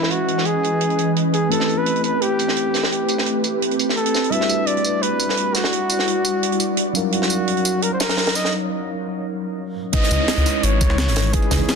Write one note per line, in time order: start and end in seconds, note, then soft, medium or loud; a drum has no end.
0.00 1.48 E3 medium
0.00 1.48 G#3 medium
0.00 1.48 C#4 medium
0.00 1.49 C#4 medium
0.00 0.12 E4 medium
0.00 1.50 E4 medium
0.00 1.50 B4 medium
0.00 4.28 B4 medium
0.00 1.48 D#5 medium
0.00 1.49 D#5 medium
0.00 snare medium
0.10 0.47 F#4 loud
0.10 closed hi-hat medium
0.28 closed hi-hat medium
0.28 tambourine medium
0.38 snare soft
0.45 1.16 G#4 loud
0.45 closed hi-hat medium
0.63 closed hi-hat medium
0.63 tambourine medium
0.81 closed hi-hat medium
0.90 closed hi-hat soft
0.98 closed hi-hat medium
0.98 tambourine medium
1.16 closed hi-hat medium
1.33 1.53 G#4 medium
1.33 closed hi-hat medium
1.33 tambourine medium
1.49 4.29 A3 medium
1.49 4.29 C4 medium
1.49 4.30 E4 medium
1.49 4.29 G4 medium
1.49 4.30 G4 medium
1.49 1.79 A4 loud
1.49 4.31 B4 medium
1.49 closed hi-hat medium
1.60 snare soft
1.69 closed hi-hat medium
1.69 tambourine medium
1.78 2.04 B4 loud
1.86 closed hi-hat medium
1.96 closed hi-hat soft
2.04 2.23 B4 medium
2.04 closed hi-hat medium
2.04 tambourine medium
2.22 2.91 G4 medium
2.22 closed hi-hat medium
2.39 closed hi-hat medium
2.39 tambourine medium
2.48 snare soft
2.56 closed hi-hat medium
2.74 snare soft
2.74 closed hi-hat medium
2.74 tambourine medium
2.83 snare soft
2.91 3.40 G4 medium
2.91 closed hi-hat medium
3.08 closed hi-hat medium
3.08 tambourine medium
3.18 snare soft
3.26 closed hi-hat medium
3.44 closed hi-hat medium
3.44 tambourine medium
3.62 closed hi-hat medium
3.71 closed hi-hat soft
3.79 closed hi-hat medium
3.79 tambourine medium
3.89 snare soft
3.97 4.33 A4 loud
3.97 closed hi-hat medium
4.06 closed hi-hat medium
4.14 snare soft
4.14 tambourine medium
4.24 closed hi-hat medium
4.30 6.92 G3 medium
4.30 6.93 D4 medium
4.30 6.93 E4 medium
4.30 6.92 F#4 medium
4.30 6.94 F#4 medium
4.30 6.94 B4 medium
4.30 6.92 D5 medium
4.30 4.68 E5 loud
4.30 closed hi-hat medium
4.41 snare soft
4.49 closed hi-hat medium
4.49 tambourine medium
4.67 5.04 D5 loud
4.67 closed hi-hat medium
4.77 closed hi-hat soft
4.84 closed hi-hat medium
4.84 tambourine medium
5.02 5.56 B4 loud
5.02 closed hi-hat medium
5.20 closed hi-hat medium
5.20 tambourine medium
5.29 snare soft
5.37 closed hi-hat medium
5.55 6.95 F#4 loud
5.55 snare soft
5.55 closed hi-hat medium
5.55 tambourine medium
5.64 snare medium
5.73 closed hi-hat medium
5.90 closed hi-hat medium
5.90 tambourine medium
5.99 snare soft
6.08 closed hi-hat medium
6.25 closed hi-hat medium
6.25 tambourine medium
6.43 closed hi-hat medium
6.52 closed hi-hat soft
6.60 closed hi-hat medium
6.60 tambourine medium
6.77 closed hi-hat medium
6.93 9.73 F#3 medium
6.93 8.51 F#3 medium
6.93 9.73 C#4 medium
6.93 8.51 D#4 medium
6.93 9.74 D#4 medium
6.93 9.75 A#4 medium
6.93 8.51 C#5 medium
6.93 8.51 F5 medium
6.93 9.74 F5 medium
6.93 closed hi-hat medium
6.93 tambourine medium
7.12 7.84 F#4 medium
7.12 closed hi-hat medium
7.22 snare soft
7.30 closed hi-hat medium
7.30 tambourine medium
7.48 closed hi-hat medium
7.57 closed hi-hat soft
7.65 closed hi-hat medium
7.65 tambourine medium
7.82 7.93 A#4 medium
7.82 closed hi-hat medium
7.93 8.02 C5 medium
8.00 8.37 A#4 loud
8.00 snare loud
8.00 closed hi-hat medium
8.00 tambourine medium
8.09 snare loud
8.09 closed hi-hat medium
8.17 snare medium
8.17 closed hi-hat medium
8.27 snare loud
8.27 closed hi-hat medium
8.35 8.53 D#5 medium
8.35 snare soft
8.35 closed hi-hat medium
8.35 tambourine medium
8.45 snare medium
9.93 11.75 E3 medium
9.93 10.17 G#3 medium
9.93 10.18 C#4 medium
9.93 10.18 D#4 medium
9.93 10.18 E4 medium
9.93 10.18 B4 medium
9.93 11.75 D#5 medium
9.93 10.65 D#5 loud
9.93 11.75 B5 medium
9.93 kick loud
9.93 closed hi-hat medium
9.93 closed hi-hat loud
9.93 downlifter medium
10.02 snare soft
10.02 closed hi-hat soft
10.11 10.19 C#2 loud
10.11 closed hi-hat medium
10.11 tambourine medium
10.19 10.25 G#3 medium
10.19 10.25 C#4 medium
10.19 10.26 D#4 medium
10.19 10.26 E4 medium
10.19 10.26 C#5 medium
10.28 snare loud
10.28 closed hi-hat medium
10.37 10.45 C#2 medium
10.37 closed hi-hat soft
10.46 snare soft
10.46 closed hi-hat medium
10.46 open hi-hat medium
10.46 tambourine medium
10.63 10.83 G#1 medium
10.63 11.35 C#5 loud
10.63 closed hi-hat loud
10.63 closed hi-hat medium
10.81 11.09 C#2 loud
10.81 kick loud
10.81 closed hi-hat medium
10.81 tambourine medium
10.90 snare medium
10.98 snare loud
10.98 closed hi-hat loud
10.98 closed hi-hat medium
11.07 11.32 G#1 medium
11.07 snare soft
11.16 snare loud
11.16 closed hi-hat medium
11.16 open hi-hat medium
11.16 tambourine medium
11.33 11.57 G#3 medium
11.33 11.58 C#4 medium
11.33 11.58 D#4 medium
11.33 11.58 E4 medium
11.33 11.75 G#4 medium
11.33 11.59 B4 medium
11.33 kick loud
11.33 closed hi-hat medium
11.42 closed hi-hat soft
11.51 11.59 C#2 loud
11.51 kick medium
11.51 snare loud
11.51 closed hi-hat medium
11.51 tambourine medium
11.58 11.75 G#3 medium
11.58 11.75 C#4 medium
11.58 11.75 D#4 medium
11.58 11.75 E4 medium
11.58 11.75 C#5 loud
11.68 snare soft
11.68 snare loud
11.68 closed hi-hat medium